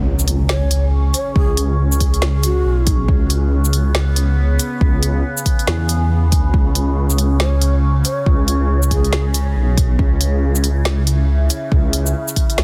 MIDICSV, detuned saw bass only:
0, 0, Header, 1, 2, 480
1, 0, Start_track
1, 0, Key_signature, 4, "minor"
1, 0, Tempo, 431655
1, 1509, Time_signature, 4, 2, 24, 8
1, 14055, End_track
2, 0, Start_track
2, 0, Title_t, "Detuned saw bass"
2, 0, Program_c, 0, 39
2, 0, Note_on_c, 0, 37, 100
2, 534, Note_off_c, 0, 37, 0
2, 549, Note_on_c, 0, 37, 93
2, 1254, Note_off_c, 0, 37, 0
2, 1509, Note_on_c, 0, 37, 96
2, 1974, Note_off_c, 0, 37, 0
2, 1989, Note_on_c, 0, 37, 97
2, 2934, Note_off_c, 0, 37, 0
2, 2948, Note_on_c, 0, 35, 101
2, 3414, Note_off_c, 0, 35, 0
2, 3430, Note_on_c, 0, 37, 98
2, 4375, Note_off_c, 0, 37, 0
2, 4388, Note_on_c, 0, 37, 95
2, 5094, Note_off_c, 0, 37, 0
2, 5349, Note_on_c, 0, 37, 99
2, 5815, Note_off_c, 0, 37, 0
2, 6309, Note_on_c, 0, 40, 96
2, 6976, Note_off_c, 0, 40, 0
2, 6976, Note_on_c, 0, 39, 96
2, 7254, Note_off_c, 0, 39, 0
2, 7270, Note_on_c, 0, 37, 97
2, 8215, Note_off_c, 0, 37, 0
2, 8228, Note_on_c, 0, 37, 96
2, 8934, Note_off_c, 0, 37, 0
2, 9190, Note_on_c, 0, 37, 98
2, 9654, Note_off_c, 0, 37, 0
2, 9670, Note_on_c, 0, 37, 95
2, 10615, Note_off_c, 0, 37, 0
2, 10629, Note_on_c, 0, 35, 99
2, 11094, Note_off_c, 0, 35, 0
2, 11109, Note_on_c, 0, 37, 97
2, 12054, Note_off_c, 0, 37, 0
2, 12068, Note_on_c, 0, 37, 94
2, 12774, Note_off_c, 0, 37, 0
2, 13029, Note_on_c, 0, 37, 99
2, 13494, Note_off_c, 0, 37, 0
2, 13989, Note_on_c, 0, 37, 96
2, 14055, Note_off_c, 0, 37, 0
2, 14055, End_track
0, 0, End_of_file